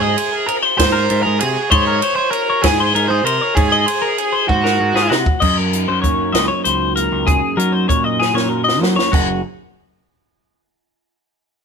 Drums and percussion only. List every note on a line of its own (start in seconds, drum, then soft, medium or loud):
0.18 ride medium
0.48 ride medium
0.79 kick medium
0.79 snare loud
0.79 ride loud
1.10 ride medium
1.40 ride medium
1.72 kick loud
1.72 ride loud
2.02 ride medium
2.33 ride medium
2.64 kick medium
2.64 snare loud
2.64 ride loud
2.96 ride medium
3.26 ride medium
3.57 kick loud
3.57 ride loud
3.88 ride medium
4.18 ride medium
4.49 kick medium
4.66 snare medium
4.96 snare medium
5.12 snare loud
5.26 kick loud
5.42 kick loud
5.42 crash loud
5.73 closed hi-hat medium
6.04 kick medium
6.04 closed hi-hat medium
6.35 snare loud
6.35 closed hi-hat medium
6.65 closed hi-hat medium
6.97 closed hi-hat medium
7.28 kick loud
7.28 closed hi-hat medium
7.60 closed hi-hat medium
7.89 kick medium
7.89 closed hi-hat medium
8.22 snare medium
8.37 snare medium
8.69 snare medium
8.83 snare medium
8.99 snare medium
9.13 kick loud
9.13 crash medium